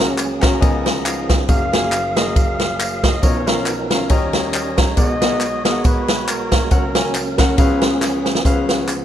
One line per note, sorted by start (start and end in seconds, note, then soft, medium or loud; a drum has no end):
0.00 0.58 C#2 medium
0.00 0.58 C#3 medium
0.00 0.62 C#3 medium
0.00 0.62 F#3 medium
0.00 0.61 A#3 medium
0.00 0.18 C#4 medium
0.00 1.48 C#4 medium
0.00 0.19 F#4 medium
0.00 1.46 G#4 medium
0.00 0.16 A#4 medium
0.00 0.19 A#4 medium
0.00 0.19 F#5 medium
0.00 tambourine medium
0.18 clap medium
0.18 ride medium
0.18 tambourine medium
0.41 0.61 C#4 medium
0.41 0.61 F#4 medium
0.41 0.59 A#4 medium
0.41 0.62 F#5 medium
0.41 0.60 A#5 medium
0.41 kick medium
0.41 snare loud
0.41 clap medium
0.41 ride medium
0.41 tambourine soft
0.60 1.44 C#2 medium
0.60 1.45 C#3 medium
0.60 1.48 F3 medium
0.60 1.33 B3 medium
0.60 1.48 B3 medium
0.60 1.48 D#4 soft
0.60 1.33 F4 medium
0.60 1.33 A#4 medium
0.60 1.33 D#5 medium
0.60 1.02 G#5 medium
0.60 kick loud
0.60 ride medium
0.60 tambourine medium
0.86 snare loud
0.86 ride medium
0.86 tambourine soft
1.05 1.46 F5 medium
1.05 clap loud
1.05 ride medium
1.05 tambourine loud
1.29 kick medium
1.29 snare loud
1.29 ride medium
1.29 tambourine soft
1.48 3.19 F#1 medium
1.48 3.19 F#2 medium
1.48 3.21 F#3 medium
1.48 3.21 A#3 medium
1.48 1.61 A#3 medium
1.48 1.61 F#4 medium
1.48 3.21 G#4 medium
1.48 1.61 G#4 medium
1.48 3.21 F5 medium
1.48 1.62 F5 medium
1.48 2.18 F5 loud
1.48 kick loud
1.48 ride medium
1.48 tambourine medium
1.73 1.93 A#3 medium
1.73 1.93 F#4 medium
1.73 1.93 G#4 medium
1.73 1.93 G#5 medium
1.73 snare loud
1.73 ride soft
1.73 tambourine medium
1.92 clap medium
1.92 ride medium
1.92 tambourine medium
2.16 2.61 A#3 medium
2.16 2.61 F#4 medium
2.16 2.61 G#4 medium
2.16 2.61 A#4 medium
2.16 2.38 D#5 loud
2.16 snare loud
2.16 ride medium
2.16 tambourine soft
2.36 3.06 F5 loud
2.36 kick loud
2.36 ride medium
2.36 tambourine medium
2.59 snare medium
2.59 ride medium
2.59 tambourine soft
2.80 clap loud
2.80 ride medium
2.80 tambourine medium
3.04 3.25 D#5 medium
3.04 kick medium
3.04 snare loud
3.04 ride medium
3.04 tambourine soft
3.22 4.06 B1 medium
3.22 4.06 B2 medium
3.22 4.09 F3 medium
3.22 4.09 B3 medium
3.22 3.35 C#4 medium
3.22 4.95 C#4 medium
3.22 4.95 D#4 medium
3.22 3.35 F4 medium
3.22 4.09 A#4 medium
3.22 3.36 A#4 medium
3.22 3.50 C#5 loud
3.22 3.36 D#5 medium
3.22 kick loud
3.22 ride medium
3.22 tambourine medium
3.47 3.67 C#4 medium
3.47 3.67 F4 medium
3.47 3.67 A#4 medium
3.47 3.91 A#4 medium
3.47 3.67 F5 medium
3.47 snare loud
3.47 ride soft
3.47 tambourine medium
3.66 clap medium
3.66 ride medium
3.66 tambourine medium
3.90 4.08 C#4 medium
3.90 4.11 F4 medium
3.90 4.09 A#4 medium
3.90 4.11 F5 medium
3.90 snare loud
3.90 ride medium
3.90 tambourine medium
4.09 4.93 D#2 medium
4.09 4.93 D#3 medium
4.09 4.97 G3 medium
4.09 4.82 C#4 medium
4.09 4.82 G4 medium
4.09 4.82 A#4 medium
4.09 6.69 C#5 medium
4.09 4.53 D#5 loud
4.09 kick loud
4.09 ride medium
4.09 tambourine medium
4.33 snare loud
4.33 ride medium
4.33 tambourine medium
4.53 4.76 D#5 medium
4.53 clap loud
4.53 ride medium
4.53 tambourine medium
4.78 4.96 A#5 medium
4.78 kick medium
4.78 snare loud
4.78 ride medium
4.78 tambourine soft
4.97 6.67 B1 medium
4.97 6.67 B2 medium
4.97 6.70 B2 medium
4.97 6.70 G#3 medium
4.97 5.10 B3 medium
4.97 6.70 B3 medium
4.97 6.70 F#4 medium
4.97 5.10 G#4 medium
4.97 5.10 A#4 medium
4.97 5.61 D#5 loud
4.97 5.10 F#5 medium
4.97 kick loud
4.97 ride medium
4.97 tambourine medium
5.21 5.41 B3 medium
5.21 5.41 G#4 medium
5.21 5.42 A#4 medium
5.21 5.42 F#5 medium
5.21 snare loud
5.21 ride medium
5.21 tambourine medium
5.40 clap medium
5.40 ride medium
5.40 tambourine medium
5.65 6.09 B3 medium
5.65 6.09 G#4 medium
5.65 6.10 A#4 medium
5.65 5.87 D#5 loud
5.65 5.70 F5 medium
5.65 snare loud
5.65 ride medium
5.65 tambourine soft
5.71 6.12 F#5 medium
5.84 6.31 B4 loud
5.84 kick loud
5.84 ride medium
5.84 tambourine medium
6.08 snare loud
6.08 ride medium
6.08 tambourine medium
6.28 6.72 A#4 medium
6.28 clap loud
6.28 ride medium
6.28 tambourine loud
6.52 kick medium
6.52 snare loud
6.52 ride medium
6.52 tambourine medium
6.70 7.54 C#2 medium
6.70 7.57 C#3 medium
6.70 7.54 C#3 medium
6.70 7.57 F#3 medium
6.70 7.57 A#3 medium
6.70 8.43 C#4 medium
6.70 6.83 C#4 medium
6.70 6.83 F#4 medium
6.70 7.57 A#4 medium
6.70 6.84 A#4 medium
6.70 7.12 A#4 medium
6.70 6.84 F#5 medium
6.70 kick loud
6.70 ride medium
6.70 tambourine medium
6.95 7.15 C#4 medium
6.95 7.15 F#4 medium
6.95 7.15 A#4 medium
6.95 7.15 G#5 medium
6.95 snare loud
6.95 ride medium
6.95 tambourine medium
7.14 clap medium
7.14 ride medium
7.14 tambourine medium
7.38 7.56 C#4 medium
7.38 7.58 F#4 medium
7.38 7.58 A#4 medium
7.38 7.58 F#5 loud
7.38 kick loud
7.38 snare loud
7.38 clap medium
7.38 ride medium
7.38 tambourine soft
7.57 8.41 C#2 medium
7.57 8.41 C#3 medium
7.57 8.44 F3 medium
7.57 8.44 B3 medium
7.57 8.29 C#4 medium
7.57 8.44 G#4 medium
7.57 8.29 G#4 medium
7.57 8.30 B4 medium
7.57 8.30 F5 loud
7.57 kick loud
7.57 ride medium
7.57 tambourine medium
7.81 snare loud
7.81 ride medium
7.81 tambourine soft
8.01 snare medium
8.01 clap medium
8.01 tambourine medium
8.25 snare medium
8.25 tambourine soft
8.35 snare loud
8.44 9.05 C#2 medium
8.44 9.05 C#3 soft
8.44 9.05 C#3 medium
8.44 9.05 F3 soft
8.44 9.05 B3 soft
8.44 8.89 C#4 medium
8.44 8.90 G#4 medium
8.44 8.90 B4 medium
8.44 8.90 F5 loud
8.44 kick loud
8.44 closed hi-hat medium
8.44 tambourine medium
8.69 snare medium
8.69 closed hi-hat medium
8.69 tambourine medium
8.88 clap medium
8.88 closed hi-hat medium
8.88 tambourine medium